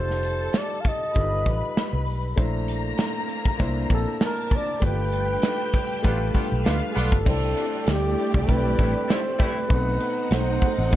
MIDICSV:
0, 0, Header, 1, 9, 480
1, 0, Start_track
1, 0, Key_signature, 0, "major"
1, 0, Tempo, 610376
1, 1869, Time_signature, 4, 2, 24, 8
1, 8619, End_track
2, 0, Start_track
2, 0, Title_t, "Flugelhorn"
2, 0, Program_c, 0, 56
2, 0, Note_on_c, 0, 72, 106
2, 453, Note_on_c, 0, 74, 87
2, 465, Note_off_c, 0, 72, 0
2, 634, Note_on_c, 0, 77, 70
2, 646, Note_off_c, 0, 74, 0
2, 692, Note_on_c, 0, 75, 101
2, 704, Note_off_c, 0, 77, 0
2, 1641, Note_off_c, 0, 75, 0
2, 3094, Note_on_c, 0, 69, 94
2, 3306, Note_off_c, 0, 69, 0
2, 3343, Note_on_c, 0, 70, 91
2, 3586, Note_on_c, 0, 74, 93
2, 3597, Note_off_c, 0, 70, 0
2, 3808, Note_off_c, 0, 74, 0
2, 3823, Note_on_c, 0, 71, 103
2, 5214, Note_off_c, 0, 71, 0
2, 5437, Note_on_c, 0, 68, 55
2, 5495, Note_on_c, 0, 69, 76
2, 5507, Note_off_c, 0, 68, 0
2, 5721, Note_off_c, 0, 69, 0
2, 5738, Note_on_c, 0, 69, 89
2, 6215, Note_on_c, 0, 67, 86
2, 6226, Note_off_c, 0, 69, 0
2, 6684, Note_on_c, 0, 71, 82
2, 6696, Note_off_c, 0, 67, 0
2, 7173, Note_on_c, 0, 72, 93
2, 7184, Note_off_c, 0, 71, 0
2, 7408, Note_on_c, 0, 71, 94
2, 7419, Note_off_c, 0, 72, 0
2, 8123, Note_on_c, 0, 72, 90
2, 8135, Note_off_c, 0, 71, 0
2, 8593, Note_off_c, 0, 72, 0
2, 8619, End_track
3, 0, Start_track
3, 0, Title_t, "String section"
3, 0, Program_c, 1, 48
3, 0, Note_on_c, 1, 69, 78
3, 0, Note_on_c, 1, 81, 81
3, 889, Note_off_c, 1, 69, 0
3, 891, Note_off_c, 1, 81, 0
3, 916, Note_on_c, 1, 71, 82
3, 919, Note_on_c, 1, 83, 94
3, 1854, Note_off_c, 1, 71, 0
3, 1855, Note_off_c, 1, 83, 0
3, 1870, Note_on_c, 1, 58, 83
3, 1872, Note_on_c, 1, 82, 94
3, 3281, Note_off_c, 1, 58, 0
3, 3282, Note_off_c, 1, 82, 0
3, 3314, Note_on_c, 1, 70, 79
3, 3315, Note_on_c, 1, 81, 86
3, 3782, Note_off_c, 1, 70, 0
3, 3783, Note_off_c, 1, 81, 0
3, 3790, Note_on_c, 1, 79, 100
3, 3795, Note_on_c, 1, 67, 78
3, 5200, Note_off_c, 1, 79, 0
3, 5203, Note_off_c, 1, 67, 0
3, 5230, Note_on_c, 1, 65, 76
3, 5232, Note_on_c, 1, 77, 84
3, 5699, Note_off_c, 1, 65, 0
3, 5700, Note_off_c, 1, 77, 0
3, 5710, Note_on_c, 1, 74, 90
3, 5711, Note_on_c, 1, 57, 84
3, 5711, Note_on_c, 1, 67, 82
3, 7595, Note_off_c, 1, 74, 0
3, 7596, Note_off_c, 1, 57, 0
3, 7596, Note_off_c, 1, 67, 0
3, 7629, Note_on_c, 1, 60, 86
3, 7629, Note_on_c, 1, 63, 85
3, 7632, Note_on_c, 1, 78, 88
3, 8619, Note_off_c, 1, 60, 0
3, 8619, Note_off_c, 1, 63, 0
3, 8619, Note_off_c, 1, 78, 0
3, 8619, End_track
4, 0, Start_track
4, 0, Title_t, "Grand piano"
4, 0, Program_c, 2, 0
4, 0, Note_on_c, 2, 55, 67
4, 0, Note_on_c, 2, 63, 61
4, 0, Note_on_c, 2, 65, 61
4, 0, Note_on_c, 2, 69, 71
4, 73, Control_c, 2, 64, 127
4, 693, Note_off_c, 2, 55, 0
4, 695, Note_off_c, 2, 63, 0
4, 698, Note_off_c, 2, 65, 0
4, 702, Note_off_c, 2, 69, 0
4, 890, Note_on_c, 2, 55, 69
4, 896, Note_on_c, 2, 63, 64
4, 905, Note_on_c, 2, 65, 61
4, 911, Note_on_c, 2, 69, 75
4, 1647, Note_off_c, 2, 55, 0
4, 1650, Note_off_c, 2, 63, 0
4, 1654, Note_off_c, 2, 65, 0
4, 1657, Note_off_c, 2, 69, 0
4, 1856, Note_on_c, 2, 57, 86
4, 1864, Note_on_c, 2, 62, 77
4, 1868, Note_on_c, 2, 64, 77
4, 1876, Note_on_c, 2, 72, 93
4, 1879, Control_c, 2, 64, 0
4, 2010, Control_c, 2, 64, 127
4, 2610, Note_off_c, 2, 57, 0
4, 2613, Note_off_c, 2, 62, 0
4, 2616, Note_off_c, 2, 64, 0
4, 2620, Note_off_c, 2, 72, 0
4, 2819, Note_on_c, 2, 58, 90
4, 2825, Note_on_c, 2, 62, 78
4, 2831, Note_on_c, 2, 64, 78
4, 2838, Note_on_c, 2, 72, 95
4, 3571, Note_off_c, 2, 58, 0
4, 3574, Note_off_c, 2, 62, 0
4, 3577, Note_off_c, 2, 64, 0
4, 3580, Note_off_c, 2, 72, 0
4, 3773, Note_on_c, 2, 57, 73
4, 3782, Note_on_c, 2, 65, 65
4, 3788, Note_on_c, 2, 67, 67
4, 3797, Note_on_c, 2, 71, 78
4, 3800, Control_c, 2, 64, 0
4, 3954, Control_c, 2, 64, 127
4, 4528, Note_off_c, 2, 57, 0
4, 4532, Note_off_c, 2, 65, 0
4, 4535, Note_off_c, 2, 67, 0
4, 4539, Note_off_c, 2, 71, 0
4, 4738, Note_on_c, 2, 57, 95
4, 4744, Note_on_c, 2, 65, 76
4, 4751, Note_on_c, 2, 67, 80
4, 4758, Note_on_c, 2, 71, 102
4, 5489, Note_off_c, 2, 57, 0
4, 5493, Note_off_c, 2, 65, 0
4, 5496, Note_off_c, 2, 67, 0
4, 5500, Note_off_c, 2, 71, 0
4, 5700, Note_on_c, 2, 57, 73
4, 5707, Note_on_c, 2, 62, 61
4, 5713, Note_on_c, 2, 64, 63
4, 5718, Control_c, 2, 64, 0
4, 5720, Note_on_c, 2, 72, 80
4, 5851, Control_c, 2, 64, 127
4, 6450, Note_off_c, 2, 57, 0
4, 6453, Note_off_c, 2, 62, 0
4, 6456, Note_off_c, 2, 64, 0
4, 6460, Note_off_c, 2, 72, 0
4, 6657, Note_on_c, 2, 57, 72
4, 6664, Note_on_c, 2, 62, 67
4, 6669, Note_on_c, 2, 64, 72
4, 6679, Note_on_c, 2, 60, 79
4, 7407, Note_off_c, 2, 57, 0
4, 7411, Note_off_c, 2, 62, 0
4, 7414, Note_off_c, 2, 64, 0
4, 7419, Note_off_c, 2, 60, 0
4, 7612, Note_on_c, 2, 57, 73
4, 7620, Note_on_c, 2, 60, 63
4, 7625, Note_on_c, 2, 63, 61
4, 7633, Note_on_c, 2, 59, 74
4, 7637, Control_c, 2, 64, 0
4, 7785, Control_c, 2, 64, 127
4, 8364, Note_off_c, 2, 57, 0
4, 8369, Note_off_c, 2, 60, 0
4, 8371, Note_off_c, 2, 63, 0
4, 8375, Note_off_c, 2, 59, 0
4, 8577, Note_on_c, 2, 57, 77
4, 8585, Note_on_c, 2, 60, 67
4, 8589, Note_on_c, 2, 63, 69
4, 8619, Note_off_c, 2, 57, 0
4, 8619, Note_off_c, 2, 60, 0
4, 8619, Note_off_c, 2, 63, 0
4, 8619, End_track
5, 0, Start_track
5, 0, Title_t, "Horn section"
5, 0, Program_c, 3, 61
5, 4747, Note_on_c, 3, 65, 81
5, 4748, Note_on_c, 3, 59, 73
5, 4750, Note_on_c, 3, 62, 68
5, 4858, Note_off_c, 3, 65, 0
5, 4859, Note_off_c, 3, 59, 0
5, 4859, Note_off_c, 3, 62, 0
5, 4985, Note_on_c, 3, 65, 76
5, 4988, Note_on_c, 3, 59, 74
5, 4989, Note_on_c, 3, 62, 69
5, 5097, Note_off_c, 3, 65, 0
5, 5098, Note_off_c, 3, 59, 0
5, 5099, Note_off_c, 3, 62, 0
5, 5227, Note_on_c, 3, 62, 65
5, 5227, Note_on_c, 3, 65, 75
5, 5228, Note_on_c, 3, 59, 63
5, 5338, Note_off_c, 3, 59, 0
5, 5338, Note_off_c, 3, 62, 0
5, 5338, Note_off_c, 3, 65, 0
5, 5464, Note_on_c, 3, 65, 97
5, 5465, Note_on_c, 3, 59, 85
5, 5468, Note_on_c, 3, 62, 88
5, 5618, Note_off_c, 3, 65, 0
5, 5619, Note_off_c, 3, 59, 0
5, 5621, Note_off_c, 3, 62, 0
5, 6908, Note_on_c, 3, 57, 72
5, 6909, Note_on_c, 3, 55, 68
5, 6911, Note_on_c, 3, 64, 82
5, 7018, Note_off_c, 3, 55, 0
5, 7018, Note_off_c, 3, 57, 0
5, 7019, Note_off_c, 3, 64, 0
5, 7139, Note_on_c, 3, 55, 72
5, 7141, Note_on_c, 3, 57, 76
5, 7141, Note_on_c, 3, 64, 84
5, 7224, Note_off_c, 3, 55, 0
5, 7225, Note_off_c, 3, 57, 0
5, 7225, Note_off_c, 3, 64, 0
5, 7382, Note_on_c, 3, 55, 84
5, 7382, Note_on_c, 3, 64, 91
5, 7383, Note_on_c, 3, 57, 81
5, 7536, Note_off_c, 3, 55, 0
5, 7536, Note_off_c, 3, 57, 0
5, 7536, Note_off_c, 3, 64, 0
5, 8619, End_track
6, 0, Start_track
6, 0, Title_t, "String machine"
6, 0, Program_c, 4, 50
6, 1869, Note_on_c, 4, 46, 69
6, 1871, Note_on_c, 4, 62, 94
6, 1873, Note_on_c, 4, 60, 83
6, 3770, Note_off_c, 4, 46, 0
6, 3772, Note_off_c, 4, 60, 0
6, 3793, Note_on_c, 4, 55, 87
6, 3793, Note_on_c, 4, 69, 72
6, 3794, Note_on_c, 4, 71, 87
6, 3795, Note_on_c, 4, 65, 68
6, 5678, Note_off_c, 4, 62, 0
6, 5691, Note_off_c, 4, 55, 0
6, 5691, Note_off_c, 4, 69, 0
6, 5691, Note_off_c, 4, 71, 0
6, 5692, Note_off_c, 4, 65, 0
6, 5708, Note_on_c, 4, 57, 81
6, 5712, Note_on_c, 4, 55, 74
6, 5712, Note_on_c, 4, 64, 92
6, 5715, Note_on_c, 4, 60, 82
6, 5718, Note_on_c, 4, 62, 81
6, 7608, Note_off_c, 4, 55, 0
6, 7608, Note_off_c, 4, 64, 0
6, 7610, Note_off_c, 4, 60, 0
6, 7611, Note_off_c, 4, 62, 0
6, 7621, Note_on_c, 4, 47, 71
6, 7624, Note_on_c, 4, 63, 84
6, 8619, Note_off_c, 4, 47, 0
6, 8619, Note_off_c, 4, 57, 0
6, 8619, Note_off_c, 4, 63, 0
6, 8619, End_track
7, 0, Start_track
7, 0, Title_t, "Fingered electric bass"
7, 0, Program_c, 5, 33
7, 0, Note_on_c, 5, 29, 86
7, 371, Note_off_c, 5, 29, 0
7, 913, Note_on_c, 5, 31, 96
7, 1123, Note_off_c, 5, 31, 0
7, 1148, Note_on_c, 5, 33, 79
7, 1263, Note_off_c, 5, 33, 0
7, 1518, Note_on_c, 5, 36, 89
7, 1629, Note_off_c, 5, 36, 0
7, 1629, Note_on_c, 5, 35, 82
7, 1841, Note_off_c, 5, 35, 0
7, 1869, Note_on_c, 5, 34, 84
7, 2293, Note_off_c, 5, 34, 0
7, 2830, Note_on_c, 5, 36, 88
7, 3041, Note_off_c, 5, 36, 0
7, 3068, Note_on_c, 5, 34, 81
7, 3183, Note_off_c, 5, 34, 0
7, 3788, Note_on_c, 5, 31, 99
7, 4212, Note_off_c, 5, 31, 0
7, 4758, Note_on_c, 5, 33, 92
7, 4965, Note_off_c, 5, 33, 0
7, 5127, Note_on_c, 5, 35, 88
7, 5221, Note_off_c, 5, 35, 0
7, 5235, Note_on_c, 5, 38, 91
7, 5347, Note_off_c, 5, 38, 0
7, 5477, Note_on_c, 5, 35, 85
7, 5588, Note_off_c, 5, 35, 0
7, 5603, Note_on_c, 5, 31, 77
7, 5698, Note_off_c, 5, 31, 0
7, 5713, Note_on_c, 5, 36, 88
7, 5922, Note_off_c, 5, 36, 0
7, 6193, Note_on_c, 5, 38, 86
7, 6402, Note_off_c, 5, 38, 0
7, 6562, Note_on_c, 5, 36, 93
7, 6657, Note_off_c, 5, 36, 0
7, 6676, Note_on_c, 5, 35, 94
7, 6883, Note_off_c, 5, 35, 0
7, 6913, Note_on_c, 5, 33, 81
7, 7024, Note_off_c, 5, 33, 0
7, 7631, Note_on_c, 5, 35, 96
7, 7840, Note_off_c, 5, 35, 0
7, 8107, Note_on_c, 5, 35, 91
7, 8317, Note_off_c, 5, 35, 0
7, 8480, Note_on_c, 5, 33, 85
7, 8575, Note_off_c, 5, 33, 0
7, 8619, End_track
8, 0, Start_track
8, 0, Title_t, "Muted fingered electric bass strokes"
8, 4995, Note_on_c, 9, 29, 46
8, 5074, Note_off_c, 9, 29, 0
8, 8619, End_track
9, 0, Start_track
9, 0, Title_t, "Drums"
9, 81, Note_on_c, 9, 38, 35
9, 159, Note_off_c, 9, 38, 0
9, 180, Note_on_c, 9, 42, 80
9, 259, Note_off_c, 9, 42, 0
9, 416, Note_on_c, 9, 42, 91
9, 425, Note_on_c, 9, 38, 121
9, 494, Note_off_c, 9, 42, 0
9, 503, Note_off_c, 9, 38, 0
9, 665, Note_on_c, 9, 42, 69
9, 668, Note_on_c, 9, 36, 88
9, 744, Note_off_c, 9, 42, 0
9, 746, Note_off_c, 9, 36, 0
9, 903, Note_on_c, 9, 42, 75
9, 911, Note_on_c, 9, 36, 91
9, 982, Note_off_c, 9, 42, 0
9, 989, Note_off_c, 9, 36, 0
9, 1149, Note_on_c, 9, 36, 81
9, 1150, Note_on_c, 9, 42, 65
9, 1227, Note_off_c, 9, 36, 0
9, 1228, Note_off_c, 9, 42, 0
9, 1394, Note_on_c, 9, 38, 105
9, 1395, Note_on_c, 9, 42, 94
9, 1472, Note_off_c, 9, 38, 0
9, 1474, Note_off_c, 9, 42, 0
9, 1621, Note_on_c, 9, 46, 51
9, 1700, Note_off_c, 9, 46, 0
9, 1868, Note_on_c, 9, 36, 112
9, 1871, Note_on_c, 9, 42, 74
9, 1947, Note_off_c, 9, 36, 0
9, 1950, Note_off_c, 9, 42, 0
9, 2108, Note_on_c, 9, 42, 83
9, 2187, Note_off_c, 9, 42, 0
9, 2342, Note_on_c, 9, 42, 94
9, 2350, Note_on_c, 9, 38, 118
9, 2420, Note_off_c, 9, 42, 0
9, 2429, Note_off_c, 9, 38, 0
9, 2588, Note_on_c, 9, 42, 67
9, 2667, Note_off_c, 9, 42, 0
9, 2717, Note_on_c, 9, 36, 94
9, 2795, Note_off_c, 9, 36, 0
9, 2825, Note_on_c, 9, 42, 71
9, 2830, Note_on_c, 9, 36, 95
9, 2904, Note_off_c, 9, 42, 0
9, 2909, Note_off_c, 9, 36, 0
9, 3067, Note_on_c, 9, 42, 66
9, 3068, Note_on_c, 9, 36, 83
9, 3145, Note_off_c, 9, 42, 0
9, 3146, Note_off_c, 9, 36, 0
9, 3310, Note_on_c, 9, 38, 108
9, 3312, Note_on_c, 9, 42, 88
9, 3389, Note_off_c, 9, 38, 0
9, 3390, Note_off_c, 9, 42, 0
9, 3543, Note_on_c, 9, 46, 50
9, 3549, Note_on_c, 9, 36, 94
9, 3622, Note_off_c, 9, 46, 0
9, 3627, Note_off_c, 9, 36, 0
9, 3790, Note_on_c, 9, 36, 102
9, 3792, Note_on_c, 9, 42, 83
9, 3869, Note_off_c, 9, 36, 0
9, 3871, Note_off_c, 9, 42, 0
9, 4030, Note_on_c, 9, 42, 77
9, 4108, Note_off_c, 9, 42, 0
9, 4264, Note_on_c, 9, 42, 93
9, 4273, Note_on_c, 9, 38, 115
9, 4343, Note_off_c, 9, 42, 0
9, 4351, Note_off_c, 9, 38, 0
9, 4507, Note_on_c, 9, 42, 66
9, 4512, Note_on_c, 9, 36, 89
9, 4586, Note_off_c, 9, 42, 0
9, 4590, Note_off_c, 9, 36, 0
9, 4749, Note_on_c, 9, 42, 78
9, 4753, Note_on_c, 9, 36, 95
9, 4827, Note_off_c, 9, 42, 0
9, 4832, Note_off_c, 9, 36, 0
9, 4991, Note_on_c, 9, 36, 82
9, 4994, Note_on_c, 9, 42, 66
9, 5069, Note_off_c, 9, 36, 0
9, 5072, Note_off_c, 9, 42, 0
9, 5239, Note_on_c, 9, 38, 114
9, 5241, Note_on_c, 9, 42, 93
9, 5318, Note_off_c, 9, 38, 0
9, 5319, Note_off_c, 9, 42, 0
9, 5471, Note_on_c, 9, 42, 72
9, 5549, Note_off_c, 9, 42, 0
9, 5601, Note_on_c, 9, 36, 90
9, 5679, Note_off_c, 9, 36, 0
9, 5712, Note_on_c, 9, 36, 109
9, 5714, Note_on_c, 9, 49, 92
9, 5790, Note_off_c, 9, 36, 0
9, 5793, Note_off_c, 9, 49, 0
9, 5954, Note_on_c, 9, 42, 89
9, 6033, Note_off_c, 9, 42, 0
9, 6186, Note_on_c, 9, 42, 97
9, 6195, Note_on_c, 9, 38, 119
9, 6265, Note_off_c, 9, 42, 0
9, 6274, Note_off_c, 9, 38, 0
9, 6433, Note_on_c, 9, 46, 49
9, 6512, Note_off_c, 9, 46, 0
9, 6561, Note_on_c, 9, 36, 93
9, 6639, Note_off_c, 9, 36, 0
9, 6673, Note_on_c, 9, 42, 73
9, 6675, Note_on_c, 9, 36, 90
9, 6752, Note_off_c, 9, 42, 0
9, 6753, Note_off_c, 9, 36, 0
9, 6911, Note_on_c, 9, 36, 86
9, 6915, Note_on_c, 9, 42, 67
9, 6990, Note_off_c, 9, 36, 0
9, 6994, Note_off_c, 9, 42, 0
9, 7159, Note_on_c, 9, 38, 113
9, 7160, Note_on_c, 9, 42, 96
9, 7237, Note_off_c, 9, 38, 0
9, 7239, Note_off_c, 9, 42, 0
9, 7390, Note_on_c, 9, 36, 102
9, 7391, Note_on_c, 9, 46, 53
9, 7469, Note_off_c, 9, 36, 0
9, 7469, Note_off_c, 9, 46, 0
9, 7629, Note_on_c, 9, 36, 116
9, 7632, Note_on_c, 9, 42, 85
9, 7708, Note_off_c, 9, 36, 0
9, 7710, Note_off_c, 9, 42, 0
9, 7867, Note_on_c, 9, 42, 80
9, 7946, Note_off_c, 9, 42, 0
9, 8107, Note_on_c, 9, 42, 96
9, 8116, Note_on_c, 9, 38, 119
9, 8186, Note_off_c, 9, 42, 0
9, 8195, Note_off_c, 9, 38, 0
9, 8351, Note_on_c, 9, 36, 98
9, 8352, Note_on_c, 9, 46, 51
9, 8430, Note_off_c, 9, 36, 0
9, 8430, Note_off_c, 9, 46, 0
9, 8590, Note_on_c, 9, 42, 74
9, 8594, Note_on_c, 9, 36, 98
9, 8619, Note_off_c, 9, 36, 0
9, 8619, Note_off_c, 9, 42, 0
9, 8619, End_track
0, 0, End_of_file